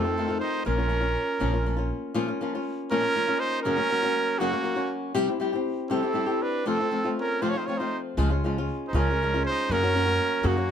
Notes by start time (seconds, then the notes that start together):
Already playing: F2 C4 A4
0.04 D#3 A3 C4 F4
0.17 D#3 A3 C4 F4
0.28 D#3 A3 C4 F4
0.40 D#4 C5
0.65 A#1 A#2 F3 A#3 C#4 F4 A#4
0.78 A#3 C#4 F4
0.88 F3 A#3 C#4 F4
1.00 A#3 C#4 F4
1.40 A#1 A#2 F3 A#3 C#4 F4
1.53 A#3 C#4 F4
1.66 F3 A#3 C#4 F4
1.77 A#3 C#4 F4
2.14 A#2 F3 A#3 C#4 F4
2.28 A#3 C#4 F4
2.41 F3 A#3 C#4 F4
2.55 A#3 C#4 F4
2.91 A#2 F3 A#3 C#4 F4 A#4
3.02 A#3 C#4 F4
3.15 F3 A#3 C#4 F4
3.28 A#3 C#4 F4
3.39 D#4 C5
3.62 F#2 C#3 F#3 C#4 A#4
3.66 A#3 C#4 F#4
3.76 F#3 A#3 C#4 F#4
3.91 F#3 A#3 C#4 F#4
4.03 F#3 A#3 C#4 F#4
4.38 F#2 C#3 F#3 A#3 C#4 F#4
4.52 F#3 A#3 C#4 F#4
4.64 F#3 A#3 C#4 F#4
4.76 F#3 A#3 C#4 F#4
5.14 C3 G3 C4 E4 G4
5.28 C4 E4 G4
5.40 G3 C4 E4 G4
5.53 C4 E4 G4
5.89 C3 G3 C4 E4 G4 A4
6.03 C4 E4 G4
6.13 G3 C4 E4 G4
6.26 C4 E4 G4
6.42 D4 B4
6.66 F2 C3 F3 A3 C4 F4 A4
6.80 F3 A3 C4 F4
6.91 F3 A3 C4 F4
7.04 F3 A3 C4 F4
7.19 C#4 A#4
7.42 F2 C3 F3 A3 C4 F4 C5
7.49 F4 C#5
7.55 F3 A3 C4 D#4 F4 C5
7.66 F3 A3 C4 F4 C#5
7.77 D#4 F4 C5
7.81 F3 A3 C4
8.17 C#2 C#3 F3 G#3 C#4 F4
8.30 G#3 C#4 F4
8.44 F3 G#3 C#4 F4
8.58 G#3 C#4 F4
8.88 D#4 C5
8.93 C#2 C#3 F3 G#3 C#4 F4 A#4
8.99 C#4
9.10 G#3 C#4 F4
9.22 F3 G#3 C#4 F4
9.34 G#3 C#4 F4
9.45 D#4 C5
9.70 F#2 C#3 F#3 A#3 C#4 F#4 A#4
9.83 F#3 A#3 C#4 F#4
9.94 F#3 A#3 C#4 F#4
10.06 F#3 A#3 C#4 F#4
10.43 F#2 C#3 F#3 A#3 C#4 F#4
10.47 A#3
10.57 F#3 A#3 C#4 F#4